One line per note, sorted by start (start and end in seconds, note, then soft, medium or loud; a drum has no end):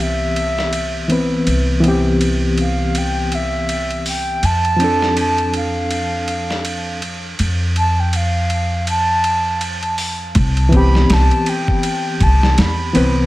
0.00 1.44 C2 medium
0.00 1.04 E3 medium
0.00 1.05 B3 medium
0.00 1.07 C4 medium
0.00 1.08 G4 medium
0.00 1.11 E5 medium
0.36 ride medium
0.58 snare soft
0.73 ride medium
1.08 1.79 E3 medium
1.08 1.80 B3 medium
1.08 1.81 C4 medium
1.08 1.81 B4 medium
1.08 ride medium
1.47 4.40 C2 medium
1.47 ride medium
1.80 4.39 E3 medium
1.80 4.41 B3 medium
1.80 ride medium
1.86 4.42 C4 medium
1.86 4.43 G4 medium
2.21 ride medium
2.58 2.99 F5 medium
2.58 ride medium
2.95 3.36 G5 medium
2.95 ride medium
3.32 4.07 E5 medium
3.32 ride medium
3.69 ride medium
3.90 ride soft
4.06 4.46 G5 medium
4.06 open hi-hat medium
4.43 7.36 F2 medium
4.43 5.18 A5 loud
4.43 ride medium
4.65 ride soft
4.77 6.97 F3 medium
4.77 6.98 C4 medium
4.77 ride medium
4.82 6.99 D4 medium
4.82 7.01 A4 medium
5.02 snare medium
5.17 5.53 A5 medium
5.17 ride medium
5.38 ride soft
5.53 6.99 F5 medium
5.53 ride medium
5.91 ride medium
6.28 ride medium
6.50 snare soft
6.65 ride medium
7.02 ride medium
7.39 10.33 F2 medium
7.39 ride medium
7.76 8.01 A5 medium
7.76 ride medium
7.99 8.17 G5 medium
8.13 8.88 F5 medium
8.13 ride medium
8.50 ride medium
8.87 9.96 A5 loud
8.87 ride medium
9.24 ride medium
9.61 ride medium
9.83 ride soft
9.98 open hi-hat medium
10.35 11.07 C2 medium
10.35 kick loud
10.35 ride medium
10.57 ride soft
10.69 12.89 E3 medium
10.69 12.91 B3 medium
10.69 kick medium
10.69 ride medium
10.74 12.92 C4 medium
10.74 12.93 G4 loud
10.74 11.14 B5 loud
10.95 snare medium
11.10 11.29 C2 loud
11.10 11.51 A5 loud
11.10 snare loud
11.10 ride medium
11.31 ride soft
11.46 12.24 G5 loud
11.46 ride medium
11.68 kick medium
11.83 ride medium
12.20 12.54 C2 medium
12.20 12.61 A5 medium
12.20 kick loud
12.20 ride medium
12.43 snare medium
12.58 12.91 E2 medium
12.58 13.17 B5 medium
12.58 snare loud
12.58 ride medium
12.93 13.26 C2 medium
12.93 13.26 E3 medium
12.93 13.26 B3 medium
12.93 13.26 C4 medium
12.93 13.26 B4 loud
12.93 ride medium